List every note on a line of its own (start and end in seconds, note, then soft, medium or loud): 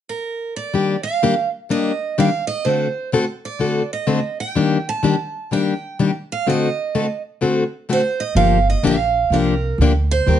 0.09 0.53 A#4 medium
0.56 1.03 D5 medium
0.74 0.95 D#3 medium
0.74 0.95 G3 medium
0.74 0.96 A#3 medium
0.74 0.96 D4 medium
0.74 0.96 G4 medium
1.03 1.48 F5 medium
1.22 1.33 D#3 medium
1.22 1.33 G3 medium
1.22 1.34 A#3 medium
1.22 1.34 D4 medium
1.22 1.34 G4 medium
1.69 1.91 D#3 medium
1.69 1.91 G3 medium
1.69 1.91 A#3 medium
1.69 1.91 D4 medium
1.69 1.92 G4 medium
1.69 2.19 D#5 medium
2.18 2.29 D#3 medium
2.18 2.29 G3 medium
2.18 2.29 A#3 medium
2.18 2.29 D4 medium
2.18 2.29 G4 medium
2.18 2.46 F5 medium
2.47 2.65 D#5 medium
2.65 2.86 D3 medium
2.65 2.87 A3 medium
2.65 2.87 C4 medium
2.65 2.87 F#4 medium
2.65 2.87 A4 medium
2.65 3.09 C5 medium
3.12 3.24 D3 medium
3.12 3.24 A3 medium
3.12 3.24 C4 medium
3.12 3.24 F#4 medium
3.12 3.24 A4 medium
3.45 3.93 D5 medium
3.59 3.81 D3 medium
3.59 3.81 A3 medium
3.59 3.82 C4 medium
3.59 3.82 F#4 medium
3.59 3.82 A4 medium
3.93 4.40 D#5 medium
4.07 4.19 D3 medium
4.07 4.19 A3 medium
4.07 4.19 C4 medium
4.07 4.19 F#4 medium
4.07 4.19 A4 medium
4.40 4.88 G5 medium
4.55 4.77 D#3 medium
4.55 4.77 G3 medium
4.55 4.77 A#3 medium
4.55 4.77 D4 medium
4.55 4.77 G4 medium
4.89 5.53 A5 medium
5.03 5.14 D#3 medium
5.03 5.15 G3 medium
5.03 5.15 A#3 medium
5.03 5.15 D4 medium
5.03 5.15 G4 medium
5.51 5.72 D#3 medium
5.51 5.73 G3 medium
5.51 5.73 A#3 medium
5.51 5.73 D4 medium
5.51 5.73 G4 medium
5.51 5.96 G5 medium
5.99 6.10 D#3 medium
5.99 6.10 G3 medium
5.99 6.11 A#3 medium
5.99 6.11 D4 medium
5.99 6.11 G4 medium
6.32 6.47 F5 medium
6.47 6.68 D3 medium
6.47 6.68 A3 medium
6.47 6.68 C4 medium
6.47 6.68 F#4 medium
6.47 6.68 A4 medium
6.47 7.21 D#5 medium
6.95 7.06 D3 medium
6.95 7.06 A3 medium
6.95 7.06 C4 medium
6.95 7.06 F#4 medium
6.95 7.06 A4 medium
7.41 7.62 D3 medium
7.41 7.63 A3 medium
7.41 7.63 C4 medium
7.41 7.63 F#4 medium
7.41 7.63 A4 medium
7.89 8.00 D3 medium
7.89 8.00 A3 medium
7.89 8.01 C4 medium
7.89 8.01 F#4 medium
7.89 8.01 A4 medium
7.89 8.22 C5 medium
8.20 8.36 D#5 medium
8.35 8.74 G1 medium
8.35 8.58 D3 medium
8.35 8.58 F3 medium
8.35 8.58 A#3 medium
8.35 8.58 D4 medium
8.35 8.58 G4 medium
8.35 8.67 F5 loud
8.70 8.85 D#5 medium
8.83 9.24 A#1 medium
8.83 8.95 D3 medium
8.83 8.95 F3 medium
8.83 8.95 A#3 medium
8.83 8.96 D4 medium
8.83 8.96 G4 medium
8.87 9.34 F5 medium
9.30 9.71 C2 medium
9.30 9.53 D3 medium
9.30 9.53 F3 medium
9.30 9.54 A#3 medium
9.30 9.54 D4 medium
9.30 9.54 G4 medium
9.30 9.77 A#4 medium
9.78 10.19 D2 medium
9.78 9.91 D3 medium
9.78 9.91 F3 medium
9.78 9.92 A#3 medium
9.78 9.92 D4 medium
9.78 9.92 G4 medium
10.11 10.39 C5 medium
10.26 10.39 D#2 medium
10.26 10.39 D#3 medium
10.26 10.39 G3 medium
10.26 10.39 C4 medium
10.26 10.39 G4 medium
10.26 10.39 A#4 medium